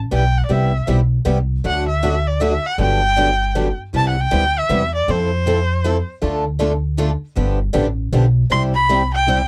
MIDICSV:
0, 0, Header, 1, 5, 480
1, 0, Start_track
1, 0, Key_signature, 1, "major"
1, 0, Tempo, 381922
1, 625, Time_signature, 3, 2, 24, 8
1, 4949, Key_signature, 0, "major"
1, 11912, End_track
2, 0, Start_track
2, 0, Title_t, "Erhu"
2, 0, Program_c, 0, 110
2, 186, Note_on_c, 0, 79, 75
2, 479, Note_on_c, 0, 78, 78
2, 498, Note_off_c, 0, 79, 0
2, 564, Note_off_c, 0, 78, 0
2, 572, Note_on_c, 0, 74, 50
2, 654, Note_on_c, 0, 76, 70
2, 673, Note_off_c, 0, 74, 0
2, 1120, Note_off_c, 0, 76, 0
2, 2096, Note_on_c, 0, 78, 89
2, 2358, Note_off_c, 0, 78, 0
2, 2373, Note_on_c, 0, 76, 83
2, 2855, Note_on_c, 0, 74, 81
2, 2874, Note_off_c, 0, 76, 0
2, 3032, Note_on_c, 0, 76, 87
2, 3050, Note_off_c, 0, 74, 0
2, 3349, Note_on_c, 0, 78, 96
2, 3368, Note_off_c, 0, 76, 0
2, 3521, Note_off_c, 0, 78, 0
2, 3533, Note_on_c, 0, 79, 95
2, 4727, Note_off_c, 0, 79, 0
2, 4984, Note_on_c, 0, 81, 99
2, 5133, Note_off_c, 0, 81, 0
2, 5141, Note_on_c, 0, 78, 79
2, 5285, Note_on_c, 0, 79, 103
2, 5304, Note_off_c, 0, 78, 0
2, 5765, Note_on_c, 0, 76, 93
2, 5784, Note_off_c, 0, 79, 0
2, 6214, Note_off_c, 0, 76, 0
2, 6221, Note_on_c, 0, 74, 84
2, 6416, Note_on_c, 0, 72, 82
2, 6435, Note_off_c, 0, 74, 0
2, 7659, Note_off_c, 0, 72, 0
2, 10706, Note_on_c, 0, 84, 106
2, 10840, Note_off_c, 0, 84, 0
2, 10994, Note_on_c, 0, 83, 111
2, 11444, Note_off_c, 0, 83, 0
2, 11491, Note_on_c, 0, 79, 99
2, 11912, Note_off_c, 0, 79, 0
2, 11912, End_track
3, 0, Start_track
3, 0, Title_t, "Steel-string acoustic guitar"
3, 0, Program_c, 1, 25
3, 2077, Note_on_c, 1, 69, 62
3, 2336, Note_off_c, 1, 69, 0
3, 2567, Note_on_c, 1, 69, 86
3, 2696, Note_off_c, 1, 69, 0
3, 3043, Note_on_c, 1, 69, 86
3, 3175, Note_off_c, 1, 69, 0
3, 11912, End_track
4, 0, Start_track
4, 0, Title_t, "Steel-string acoustic guitar"
4, 0, Program_c, 2, 25
4, 143, Note_on_c, 2, 59, 78
4, 146, Note_on_c, 2, 55, 80
4, 148, Note_on_c, 2, 64, 82
4, 152, Note_on_c, 2, 67, 80
4, 283, Note_off_c, 2, 59, 0
4, 284, Note_off_c, 2, 55, 0
4, 285, Note_off_c, 2, 64, 0
4, 288, Note_off_c, 2, 67, 0
4, 613, Note_on_c, 2, 48, 51
4, 615, Note_on_c, 2, 55, 57
4, 622, Note_on_c, 2, 67, 64
4, 625, Note_on_c, 2, 64, 65
4, 628, Note_on_c, 2, 59, 58
4, 883, Note_off_c, 2, 48, 0
4, 884, Note_off_c, 2, 55, 0
4, 887, Note_off_c, 2, 67, 0
4, 888, Note_off_c, 2, 64, 0
4, 890, Note_off_c, 2, 59, 0
4, 1095, Note_on_c, 2, 48, 80
4, 1102, Note_on_c, 2, 55, 86
4, 1103, Note_on_c, 2, 64, 85
4, 1106, Note_on_c, 2, 59, 87
4, 1106, Note_on_c, 2, 67, 93
4, 1240, Note_off_c, 2, 48, 0
4, 1243, Note_off_c, 2, 55, 0
4, 1244, Note_off_c, 2, 64, 0
4, 1245, Note_off_c, 2, 59, 0
4, 1245, Note_off_c, 2, 67, 0
4, 1570, Note_on_c, 2, 48, 85
4, 1570, Note_on_c, 2, 64, 79
4, 1573, Note_on_c, 2, 55, 80
4, 1574, Note_on_c, 2, 59, 88
4, 1580, Note_on_c, 2, 67, 91
4, 1718, Note_off_c, 2, 48, 0
4, 1718, Note_off_c, 2, 64, 0
4, 1719, Note_off_c, 2, 55, 0
4, 1719, Note_off_c, 2, 59, 0
4, 1723, Note_off_c, 2, 67, 0
4, 2062, Note_on_c, 2, 50, 52
4, 2064, Note_on_c, 2, 54, 58
4, 2070, Note_on_c, 2, 57, 62
4, 2070, Note_on_c, 2, 62, 67
4, 2073, Note_on_c, 2, 66, 70
4, 2328, Note_off_c, 2, 50, 0
4, 2329, Note_off_c, 2, 54, 0
4, 2332, Note_off_c, 2, 57, 0
4, 2332, Note_off_c, 2, 62, 0
4, 2333, Note_off_c, 2, 66, 0
4, 2546, Note_on_c, 2, 50, 81
4, 2546, Note_on_c, 2, 54, 77
4, 2549, Note_on_c, 2, 62, 85
4, 2550, Note_on_c, 2, 66, 98
4, 2554, Note_on_c, 2, 57, 87
4, 2686, Note_off_c, 2, 50, 0
4, 2686, Note_off_c, 2, 54, 0
4, 2688, Note_off_c, 2, 62, 0
4, 2688, Note_off_c, 2, 66, 0
4, 2690, Note_off_c, 2, 57, 0
4, 3015, Note_on_c, 2, 50, 74
4, 3024, Note_on_c, 2, 54, 81
4, 3028, Note_on_c, 2, 62, 88
4, 3030, Note_on_c, 2, 57, 93
4, 3036, Note_on_c, 2, 66, 93
4, 3161, Note_off_c, 2, 50, 0
4, 3166, Note_off_c, 2, 54, 0
4, 3167, Note_off_c, 2, 62, 0
4, 3168, Note_off_c, 2, 57, 0
4, 3172, Note_off_c, 2, 66, 0
4, 3495, Note_on_c, 2, 50, 54
4, 3497, Note_on_c, 2, 62, 65
4, 3498, Note_on_c, 2, 59, 59
4, 3500, Note_on_c, 2, 54, 55
4, 3503, Note_on_c, 2, 67, 61
4, 3765, Note_off_c, 2, 50, 0
4, 3766, Note_off_c, 2, 62, 0
4, 3767, Note_off_c, 2, 54, 0
4, 3767, Note_off_c, 2, 59, 0
4, 3769, Note_off_c, 2, 67, 0
4, 3977, Note_on_c, 2, 50, 79
4, 3981, Note_on_c, 2, 54, 88
4, 3987, Note_on_c, 2, 62, 86
4, 3990, Note_on_c, 2, 59, 91
4, 3992, Note_on_c, 2, 67, 79
4, 4122, Note_off_c, 2, 50, 0
4, 4124, Note_off_c, 2, 54, 0
4, 4127, Note_off_c, 2, 62, 0
4, 4129, Note_off_c, 2, 59, 0
4, 4130, Note_off_c, 2, 67, 0
4, 4462, Note_on_c, 2, 50, 77
4, 4465, Note_on_c, 2, 59, 88
4, 4466, Note_on_c, 2, 54, 80
4, 4467, Note_on_c, 2, 67, 81
4, 4470, Note_on_c, 2, 62, 94
4, 4605, Note_off_c, 2, 50, 0
4, 4606, Note_off_c, 2, 59, 0
4, 4607, Note_off_c, 2, 54, 0
4, 4607, Note_off_c, 2, 67, 0
4, 4609, Note_off_c, 2, 62, 0
4, 4947, Note_on_c, 2, 48, 56
4, 4950, Note_on_c, 2, 55, 63
4, 4954, Note_on_c, 2, 64, 64
4, 4957, Note_on_c, 2, 59, 63
4, 4959, Note_on_c, 2, 67, 68
4, 5211, Note_off_c, 2, 48, 0
4, 5213, Note_off_c, 2, 55, 0
4, 5215, Note_off_c, 2, 64, 0
4, 5216, Note_off_c, 2, 59, 0
4, 5217, Note_off_c, 2, 67, 0
4, 5417, Note_on_c, 2, 48, 90
4, 5419, Note_on_c, 2, 55, 83
4, 5419, Note_on_c, 2, 67, 93
4, 5420, Note_on_c, 2, 59, 89
4, 5421, Note_on_c, 2, 64, 87
4, 5563, Note_off_c, 2, 48, 0
4, 5563, Note_off_c, 2, 55, 0
4, 5564, Note_off_c, 2, 59, 0
4, 5564, Note_off_c, 2, 67, 0
4, 5565, Note_off_c, 2, 64, 0
4, 5896, Note_on_c, 2, 48, 91
4, 5900, Note_on_c, 2, 64, 82
4, 5901, Note_on_c, 2, 55, 79
4, 5902, Note_on_c, 2, 59, 89
4, 5911, Note_on_c, 2, 67, 92
4, 6042, Note_off_c, 2, 48, 0
4, 6044, Note_off_c, 2, 64, 0
4, 6045, Note_off_c, 2, 55, 0
4, 6045, Note_off_c, 2, 59, 0
4, 6049, Note_off_c, 2, 67, 0
4, 6387, Note_on_c, 2, 60, 68
4, 6388, Note_on_c, 2, 53, 63
4, 6398, Note_on_c, 2, 64, 69
4, 6398, Note_on_c, 2, 69, 66
4, 6651, Note_off_c, 2, 60, 0
4, 6652, Note_off_c, 2, 53, 0
4, 6657, Note_off_c, 2, 64, 0
4, 6657, Note_off_c, 2, 69, 0
4, 6872, Note_on_c, 2, 53, 83
4, 6872, Note_on_c, 2, 64, 94
4, 6874, Note_on_c, 2, 60, 94
4, 6883, Note_on_c, 2, 69, 96
4, 7010, Note_off_c, 2, 53, 0
4, 7010, Note_off_c, 2, 64, 0
4, 7011, Note_off_c, 2, 60, 0
4, 7016, Note_off_c, 2, 69, 0
4, 7344, Note_on_c, 2, 53, 84
4, 7346, Note_on_c, 2, 60, 85
4, 7352, Note_on_c, 2, 64, 82
4, 7357, Note_on_c, 2, 69, 96
4, 7486, Note_off_c, 2, 53, 0
4, 7487, Note_off_c, 2, 60, 0
4, 7490, Note_off_c, 2, 64, 0
4, 7492, Note_off_c, 2, 69, 0
4, 7811, Note_on_c, 2, 65, 69
4, 7812, Note_on_c, 2, 50, 59
4, 7813, Note_on_c, 2, 57, 64
4, 7815, Note_on_c, 2, 69, 65
4, 7819, Note_on_c, 2, 62, 63
4, 8083, Note_off_c, 2, 50, 0
4, 8083, Note_off_c, 2, 65, 0
4, 8084, Note_off_c, 2, 57, 0
4, 8085, Note_off_c, 2, 69, 0
4, 8087, Note_off_c, 2, 62, 0
4, 8281, Note_on_c, 2, 50, 78
4, 8287, Note_on_c, 2, 62, 86
4, 8289, Note_on_c, 2, 57, 91
4, 8293, Note_on_c, 2, 65, 86
4, 8297, Note_on_c, 2, 69, 93
4, 8434, Note_off_c, 2, 50, 0
4, 8437, Note_off_c, 2, 62, 0
4, 8438, Note_off_c, 2, 57, 0
4, 8440, Note_off_c, 2, 65, 0
4, 8442, Note_off_c, 2, 69, 0
4, 8773, Note_on_c, 2, 50, 84
4, 8776, Note_on_c, 2, 62, 83
4, 8776, Note_on_c, 2, 65, 93
4, 8777, Note_on_c, 2, 57, 88
4, 8788, Note_on_c, 2, 69, 94
4, 8920, Note_off_c, 2, 50, 0
4, 8922, Note_off_c, 2, 57, 0
4, 8922, Note_off_c, 2, 62, 0
4, 8922, Note_off_c, 2, 65, 0
4, 8928, Note_off_c, 2, 69, 0
4, 9253, Note_on_c, 2, 50, 57
4, 9256, Note_on_c, 2, 59, 65
4, 9260, Note_on_c, 2, 62, 69
4, 9262, Note_on_c, 2, 53, 58
4, 9265, Note_on_c, 2, 67, 71
4, 9524, Note_off_c, 2, 50, 0
4, 9526, Note_off_c, 2, 59, 0
4, 9527, Note_off_c, 2, 62, 0
4, 9529, Note_off_c, 2, 53, 0
4, 9530, Note_off_c, 2, 67, 0
4, 9716, Note_on_c, 2, 50, 86
4, 9720, Note_on_c, 2, 59, 79
4, 9722, Note_on_c, 2, 62, 93
4, 9723, Note_on_c, 2, 53, 86
4, 9725, Note_on_c, 2, 67, 94
4, 9871, Note_off_c, 2, 50, 0
4, 9873, Note_off_c, 2, 59, 0
4, 9875, Note_off_c, 2, 53, 0
4, 9875, Note_off_c, 2, 62, 0
4, 9876, Note_off_c, 2, 67, 0
4, 10212, Note_on_c, 2, 53, 81
4, 10213, Note_on_c, 2, 50, 83
4, 10215, Note_on_c, 2, 59, 84
4, 10219, Note_on_c, 2, 62, 82
4, 10223, Note_on_c, 2, 67, 95
4, 10359, Note_off_c, 2, 53, 0
4, 10360, Note_off_c, 2, 50, 0
4, 10361, Note_off_c, 2, 59, 0
4, 10363, Note_off_c, 2, 62, 0
4, 10365, Note_off_c, 2, 67, 0
4, 10680, Note_on_c, 2, 48, 66
4, 10684, Note_on_c, 2, 60, 61
4, 10688, Note_on_c, 2, 67, 69
4, 10689, Note_on_c, 2, 55, 63
4, 10696, Note_on_c, 2, 64, 69
4, 10957, Note_off_c, 2, 48, 0
4, 10959, Note_off_c, 2, 60, 0
4, 10961, Note_off_c, 2, 67, 0
4, 10962, Note_off_c, 2, 55, 0
4, 10965, Note_off_c, 2, 64, 0
4, 11176, Note_on_c, 2, 55, 91
4, 11180, Note_on_c, 2, 64, 95
4, 11182, Note_on_c, 2, 48, 87
4, 11186, Note_on_c, 2, 67, 91
4, 11191, Note_on_c, 2, 60, 91
4, 11321, Note_off_c, 2, 55, 0
4, 11323, Note_off_c, 2, 64, 0
4, 11324, Note_off_c, 2, 48, 0
4, 11326, Note_off_c, 2, 67, 0
4, 11328, Note_off_c, 2, 60, 0
4, 11667, Note_on_c, 2, 48, 78
4, 11667, Note_on_c, 2, 55, 82
4, 11674, Note_on_c, 2, 67, 81
4, 11677, Note_on_c, 2, 60, 79
4, 11677, Note_on_c, 2, 64, 89
4, 11806, Note_off_c, 2, 55, 0
4, 11807, Note_off_c, 2, 48, 0
4, 11810, Note_off_c, 2, 67, 0
4, 11811, Note_off_c, 2, 60, 0
4, 11812, Note_off_c, 2, 64, 0
4, 11912, End_track
5, 0, Start_track
5, 0, Title_t, "Upright bass"
5, 0, Program_c, 3, 32
5, 152, Note_on_c, 3, 35, 67
5, 558, Note_off_c, 3, 35, 0
5, 624, Note_on_c, 3, 36, 72
5, 1009, Note_off_c, 3, 36, 0
5, 1101, Note_on_c, 3, 35, 74
5, 1511, Note_off_c, 3, 35, 0
5, 1580, Note_on_c, 3, 36, 71
5, 1991, Note_off_c, 3, 36, 0
5, 2068, Note_on_c, 3, 38, 80
5, 3221, Note_off_c, 3, 38, 0
5, 3495, Note_on_c, 3, 31, 77
5, 4653, Note_off_c, 3, 31, 0
5, 4948, Note_on_c, 3, 36, 77
5, 5332, Note_off_c, 3, 36, 0
5, 5432, Note_on_c, 3, 38, 78
5, 5839, Note_off_c, 3, 38, 0
5, 5902, Note_on_c, 3, 40, 71
5, 6313, Note_off_c, 3, 40, 0
5, 6384, Note_on_c, 3, 41, 77
5, 7538, Note_off_c, 3, 41, 0
5, 7822, Note_on_c, 3, 38, 81
5, 8977, Note_off_c, 3, 38, 0
5, 9260, Note_on_c, 3, 31, 82
5, 9648, Note_off_c, 3, 31, 0
5, 9738, Note_on_c, 3, 33, 75
5, 10150, Note_off_c, 3, 33, 0
5, 10212, Note_on_c, 3, 35, 77
5, 10627, Note_off_c, 3, 35, 0
5, 10691, Note_on_c, 3, 36, 75
5, 11849, Note_off_c, 3, 36, 0
5, 11912, End_track
0, 0, End_of_file